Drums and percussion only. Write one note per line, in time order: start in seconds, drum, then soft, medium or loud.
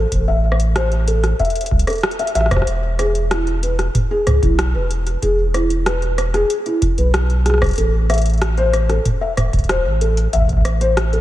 0.12 kick medium
0.12 closed hi-hat medium
0.52 cross-stick soft
0.60 closed hi-hat soft
0.76 cross-stick loud
0.76 closed hi-hat medium
0.92 closed hi-hat soft
1.08 closed hi-hat medium
1.24 cross-stick medium
1.24 closed hi-hat soft
1.39 kick medium
1.39 closed hi-hat soft
1.45 closed hi-hat soft
1.50 closed hi-hat soft
1.56 closed hi-hat medium
1.61 closed hi-hat medium
1.66 closed hi-hat medium
1.71 kick loud
1.79 closed hi-hat medium
1.87 cross-stick soft
1.87 closed hi-hat soft
1.90 closed hi-hat soft
1.93 closed hi-hat soft
1.95 closed hi-hat soft
1.98 closed hi-hat soft
2.01 cross-stick loud
2.01 closed hi-hat soft
2.03 closed hi-hat soft
2.11 closed hi-hat soft
2.19 closed hi-hat medium
2.27 closed hi-hat medium
2.35 cross-stick soft
2.35 closed hi-hat medium
2.41 cross-stick soft
2.46 cross-stick soft
2.51 kick loud
2.51 cross-stick medium
2.51 closed hi-hat soft
2.53 kick medium
2.56 kick medium
2.56 cross-stick soft
2.58 kick medium
2.60 kick medium
2.60 cross-stick soft
2.67 closed hi-hat medium
2.99 cross-stick soft
2.99 closed hi-hat medium
3.15 closed hi-hat soft
3.31 cross-stick loud
3.31 closed hi-hat medium
3.47 closed hi-hat soft
3.63 closed hi-hat medium
3.79 cross-stick medium
3.79 closed hi-hat soft
3.95 kick medium
3.95 closed hi-hat medium
3.95 mid tom medium
4.27 cross-stick soft
4.27 closed hi-hat medium
4.27 mid tom medium
4.43 kick loud
4.43 closed hi-hat soft
4.59 cross-stick loud
4.59 closed hi-hat medium
4.91 closed hi-hat medium
5.07 closed hi-hat soft
5.22 kick medium
5.22 closed hi-hat medium
5.54 cross-stick soft
5.54 closed hi-hat medium
5.70 closed hi-hat soft
5.86 cross-stick loud
5.86 closed hi-hat medium
6.02 closed hi-hat soft
6.18 cross-stick soft
6.18 closed hi-hat medium
6.34 cross-stick medium
6.34 closed hi-hat soft
6.50 closed hi-hat medium
6.66 closed hi-hat soft
6.82 kick loud
6.82 closed hi-hat medium
6.98 closed hi-hat soft
7.14 cross-stick loud
7.14 closed hi-hat medium
7.30 closed hi-hat soft
7.46 cross-stick medium
7.46 closed hi-hat medium
7.50 cross-stick soft
7.54 cross-stick soft
7.58 cross-stick soft
7.62 kick loud
7.62 cross-stick medium
7.62 closed hi-hat soft
7.64 cross-stick soft
7.64 closed hi-hat soft
7.66 closed hi-hat soft
7.69 cross-stick soft
7.69 closed hi-hat soft
7.71 closed hi-hat soft
7.73 cross-stick soft
7.73 closed hi-hat soft
7.76 closed hi-hat soft
7.78 closed hi-hat medium
8.10 cross-stick soft
8.10 closed hi-hat medium
8.14 closed hi-hat medium
8.18 closed hi-hat soft
8.22 closed hi-hat soft
8.26 closed hi-hat soft
8.30 closed hi-hat soft
8.34 closed hi-hat soft
8.38 cross-stick loud
8.38 closed hi-hat soft
8.42 closed hi-hat medium
8.57 closed hi-hat soft
8.73 cross-stick soft
8.73 closed hi-hat medium
8.90 cross-stick medium
8.90 closed hi-hat soft
9.05 kick medium
9.05 closed hi-hat medium
9.05 mid tom medium
9.37 cross-stick medium
9.37 closed hi-hat medium
9.37 mid tom medium
9.53 kick loud
9.53 closed hi-hat soft
9.59 kick medium
9.59 closed hi-hat soft
9.64 kick medium
9.64 closed hi-hat soft
9.69 kick medium
9.69 cross-stick loud
9.69 closed hi-hat medium
9.75 kick soft
9.80 kick soft
10.01 closed hi-hat medium
10.17 closed hi-hat soft
10.33 kick soft
10.33 closed hi-hat medium
10.37 kick soft
10.41 kick soft
10.45 kick medium
10.49 kick medium
10.49 closed hi-hat soft
10.53 kick medium
10.57 kick medium
10.61 kick medium
10.65 cross-stick medium
10.65 closed hi-hat medium
10.81 closed hi-hat soft
10.97 cross-stick loud
10.97 closed hi-hat medium
11.13 closed hi-hat soft